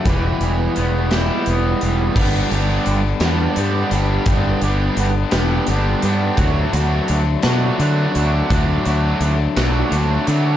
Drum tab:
CC |------|x-----|------|------|
HH |xxxxxx|-xxxxx|xxxxxx|xxxxxx|
SD |---o--|---o--|---o--|---o--|
BD |o-----|o-----|o-----|o-----|

CC |------|
HH |xxxxxx|
SD |---o--|
BD |o-----|